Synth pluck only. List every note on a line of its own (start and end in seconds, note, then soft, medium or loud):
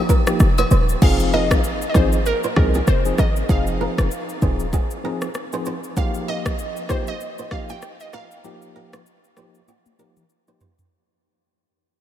1.03 1.34 F5 loud
1.34 1.88 D#5 loud
1.90 1.95 D#5 medium
1.96 2.27 C5 medium
2.26 2.56 A#4 loud
2.57 2.89 A#4 medium
2.88 3.20 C5 medium
3.19 3.47 D#5 medium
3.50 4.08 F5 loud
5.97 6.29 F5 loud
6.28 6.92 D#5 loud
6.90 7.08 C5 medium
7.08 7.53 D#5 loud
7.52 7.68 F5 loud
7.70 8.01 G5 loud
8.01 8.13 D#5 medium
8.14 10.26 F5 medium